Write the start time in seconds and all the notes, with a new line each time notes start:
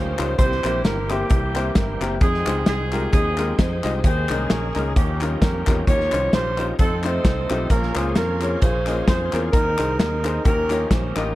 Already playing: D2 F3 C#4 D#4 F4 G4 C5
0.18 C#2 G3 C#4 D#4 F4 C5, clap, closed hi-hat
0.38 C2 C3 E3 G3 A#3 C4 E4 G4 C5, kick, closed hi-hat
0.52 snare
0.64 A#1 A#3 C4 E4 G4 C5, clap, closed hi-hat
0.84 G1 A#4, snare, closed hi-hat
1.10 A#3 C4 E4 G4 C5, clap, closed hi-hat
1.30 C2, kick, closed hi-hat
1.55 A#3 C4 E4 G4 C5, clap, closed hi-hat
1.75 G1 E4 G4 A#4, kick, snare, closed hi-hat
2.01 F#1 A#3 C4 E4 G4 A#4, snare, clap, closed hi-hat
2.21 F2 F3 G3 C4 D#4 G#4 G5, kick, closed hi-hat
2.27 G#3
2.34 snare
2.47 C#2 G#3 D#4 F4 G4 C5, clap, closed hi-hat
2.66 C2 C4 D#4 G#4, snare, closed hi-hat
2.92 G#3 D#4 F4 G4 A#4, clap, closed hi-hat
3.13 D#2 C4 D#4 G#4, kick, closed hi-hat
3.38 G#3 D#4 F4 G4 A#4, clap, closed hi-hat
3.58 F2 D#4 G#4 C5, kick, snare, closed hi-hat
3.84 C2 G#3 D#4 F4 G4 D#5, snare, clap, closed hi-hat
4.04 D#2 D#3 G#3 A#3 C#4 G#4 C5, kick, closed hi-hat
4.29 C2 G#3 A#3 C#4 D#4 A#4, clap, closed hi-hat
4.50 A#1 C#4 A#4, snare, closed hi-hat
4.76 C#2 G#3 A#3 C#4 D#4 A#4, clap, closed hi-hat
4.96 D#2 D#3 F3 A#3 C#4 D#4 G4, kick, closed hi-hat
5.21 G3 C#4 D#4 F4 A#4, clap, closed hi-hat
5.42 F2 C#4 G4 A#4, kick, snare, closed hi-hat
5.67 E2 G3 C#4 D#4 F4 A#4, kick, snare, clap, closed hi-hat
5.87 D#2 D#3 F3 A#3 C#4 D#4 F4 G4 C#5, kick, closed hi-hat
6.00 snare
6.12 C2 G3 C#4 D#4 F4 C5, clap, closed hi-hat
6.33 A#1 F4 G4 C5, snare, closed hi-hat
6.58 G3 C#4 D#4 F4 C5, clap, closed hi-hat
6.79 F2 F3 A3 C4 D#4 A4, kick, closed hi-hat
7.04 A3 C4 D#4 F4 A4 C5, clap, closed hi-hat
7.25 C2, kick, snare, closed hi-hat
7.50 B1 A3 C4 D#4 F4 G4, clap, closed hi-hat
7.70 A#1 A#2 F3 A#3 C#4 F4 G#4 A#4 C5, kick, closed hi-hat
7.83 snare
7.95 C#2 A#3 C#4 F4 G#4 C5, clap, closed hi-hat
8.15 F2 C#4 F4 A#4, snare, closed hi-hat
8.41 A#3 C#4 F4 G#4 C#5, clap, closed hi-hat
8.62 A#1 F4 G#4 C5, kick, closed hi-hat
8.87 A#3 C#4 F4 G#4 D#5, clap, closed hi-hat
9.07 F2 F4 G#4 C5, kick, snare, closed hi-hat
9.33 E2 A#3 C#4 F4 G#4 A#4, clap, closed hi-hat
9.53 D#2 D#3 A#3 D#4 G#4 A#4, kick, closed hi-hat
9.59 C4
9.78 C2 D#4 G#4 C5, clap, closed hi-hat
9.99 D#2 D#4 A#4, snare, closed hi-hat
10.25 D#4 G#4 C5, clap, closed hi-hat
10.45 D#2 D#3 F3 A#3 C#4 D#4 G4 A#4, kick, closed hi-hat
10.70 A#3 D#4 F4 G4 C#5, clap, closed hi-hat
10.90 A#1 C5, kick, snare, closed hi-hat
11.16 A1 A#3 D#4 F4 G4 A#4 D#5, snare, clap, closed hi-hat